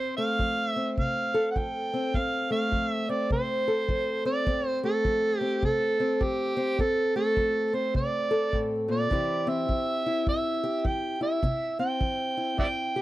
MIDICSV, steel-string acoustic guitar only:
0, 0, Header, 1, 2, 480
1, 0, Start_track
1, 0, Key_signature, -1, "major"
1, 0, Tempo, 580833
1, 1766, Time_signature, 4, 2, 24, 8
1, 10758, End_track
2, 0, Start_track
2, 0, Title_t, "Steel-string acoustic guitar"
2, 0, Program_c, 0, 25
2, 0, Note_on_c, 0, 41, 64
2, 0, Note_on_c, 0, 60, 53
2, 147, Note_on_c, 0, 57, 55
2, 285, Note_off_c, 0, 41, 0
2, 328, Note_on_c, 0, 53, 61
2, 627, Note_off_c, 0, 60, 0
2, 630, Note_on_c, 0, 60, 58
2, 770, Note_off_c, 0, 53, 0
2, 811, Note_on_c, 0, 48, 54
2, 1110, Note_on_c, 0, 69, 63
2, 1252, Note_off_c, 0, 48, 0
2, 1294, Note_on_c, 0, 53, 61
2, 1596, Note_off_c, 0, 60, 0
2, 1599, Note_on_c, 0, 60, 60
2, 1734, Note_off_c, 0, 53, 0
2, 1774, Note_on_c, 0, 41, 70
2, 1781, Note_off_c, 0, 60, 0
2, 1784, Note_on_c, 0, 60, 62
2, 2067, Note_off_c, 0, 57, 0
2, 2070, Note_on_c, 0, 57, 58
2, 2215, Note_off_c, 0, 41, 0
2, 2244, Note_on_c, 0, 53, 68
2, 2551, Note_off_c, 0, 60, 0
2, 2555, Note_on_c, 0, 60, 61
2, 2690, Note_off_c, 0, 53, 0
2, 2724, Note_on_c, 0, 48, 57
2, 3035, Note_off_c, 0, 69, 0
2, 3038, Note_on_c, 0, 69, 60
2, 3170, Note_off_c, 0, 48, 0
2, 3219, Note_on_c, 0, 53, 58
2, 3511, Note_off_c, 0, 60, 0
2, 3514, Note_on_c, 0, 60, 59
2, 3658, Note_off_c, 0, 53, 0
2, 3687, Note_on_c, 0, 41, 73
2, 3690, Note_off_c, 0, 60, 0
2, 3694, Note_on_c, 0, 60, 64
2, 3992, Note_off_c, 0, 57, 0
2, 3995, Note_on_c, 0, 57, 57
2, 4132, Note_off_c, 0, 41, 0
2, 4172, Note_on_c, 0, 53, 66
2, 4467, Note_off_c, 0, 60, 0
2, 4470, Note_on_c, 0, 60, 58
2, 4615, Note_off_c, 0, 53, 0
2, 4648, Note_on_c, 0, 48, 59
2, 4954, Note_off_c, 0, 60, 0
2, 4957, Note_on_c, 0, 60, 59
2, 5092, Note_off_c, 0, 48, 0
2, 5129, Note_on_c, 0, 53, 61
2, 5424, Note_off_c, 0, 60, 0
2, 5427, Note_on_c, 0, 60, 59
2, 5573, Note_off_c, 0, 53, 0
2, 5592, Note_off_c, 0, 57, 0
2, 5613, Note_off_c, 0, 60, 0
2, 5614, Note_on_c, 0, 41, 74
2, 5616, Note_on_c, 0, 60, 56
2, 5913, Note_on_c, 0, 57, 56
2, 5930, Note_off_c, 0, 69, 0
2, 6055, Note_off_c, 0, 41, 0
2, 6084, Note_on_c, 0, 53, 64
2, 6388, Note_off_c, 0, 60, 0
2, 6391, Note_on_c, 0, 60, 52
2, 6530, Note_off_c, 0, 53, 0
2, 6563, Note_on_c, 0, 48, 58
2, 6865, Note_on_c, 0, 69, 62
2, 7009, Note_off_c, 0, 48, 0
2, 7052, Note_on_c, 0, 45, 54
2, 7341, Note_on_c, 0, 46, 66
2, 7348, Note_off_c, 0, 45, 0
2, 7505, Note_off_c, 0, 69, 0
2, 7509, Note_off_c, 0, 57, 0
2, 7517, Note_off_c, 0, 46, 0
2, 7520, Note_on_c, 0, 48, 77
2, 7525, Note_on_c, 0, 52, 53
2, 7529, Note_off_c, 0, 60, 0
2, 7529, Note_on_c, 0, 60, 58
2, 7537, Note_on_c, 0, 64, 56
2, 7545, Note_on_c, 0, 67, 65
2, 7822, Note_off_c, 0, 60, 0
2, 7825, Note_on_c, 0, 60, 60
2, 7967, Note_off_c, 0, 48, 0
2, 8002, Note_off_c, 0, 52, 0
2, 8006, Note_on_c, 0, 52, 63
2, 8313, Note_off_c, 0, 64, 0
2, 8316, Note_on_c, 0, 64, 58
2, 8449, Note_off_c, 0, 52, 0
2, 8490, Note_on_c, 0, 43, 59
2, 8779, Note_off_c, 0, 67, 0
2, 8789, Note_on_c, 0, 67, 67
2, 8931, Note_off_c, 0, 43, 0
2, 8963, Note_on_c, 0, 52, 60
2, 9252, Note_off_c, 0, 64, 0
2, 9262, Note_on_c, 0, 64, 59
2, 9406, Note_off_c, 0, 52, 0
2, 9422, Note_off_c, 0, 64, 0
2, 9425, Note_off_c, 0, 67, 0
2, 9443, Note_on_c, 0, 48, 75
2, 9450, Note_on_c, 0, 64, 64
2, 9741, Note_off_c, 0, 60, 0
2, 9744, Note_on_c, 0, 60, 55
2, 9886, Note_off_c, 0, 48, 0
2, 9919, Note_on_c, 0, 52, 59
2, 10215, Note_off_c, 0, 64, 0
2, 10225, Note_on_c, 0, 64, 52
2, 10363, Note_off_c, 0, 52, 0
2, 10390, Note_on_c, 0, 43, 56
2, 10710, Note_on_c, 0, 67, 66
2, 10758, Note_off_c, 0, 43, 0
2, 10758, Note_off_c, 0, 60, 0
2, 10758, Note_off_c, 0, 64, 0
2, 10758, Note_off_c, 0, 67, 0
2, 10758, End_track
0, 0, End_of_file